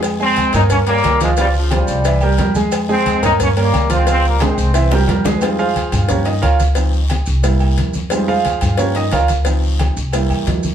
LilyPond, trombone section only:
\new Staff \with { instrumentName = "Trombone section" } { \time 4/4 \key f \minor \tempo 4 = 178 << { r8 c'4 ees'8 des'8 bes4 aes8 | g8 f8 g2 r4 | r8 c'4 ees'8 des'8 bes4 c'8 | c'8 bes8 c'2 r4 |
r1 | r1 | r1 | r1 | } \\ { r8 aes4 c'8 bes8 g4 f8 | des8 des8 des4 r2 | r8 aes4 c'8 bes8 g4 aes8 | aes8 g8 aes4 r2 |
r1 | r1 | r1 | r1 | } >> }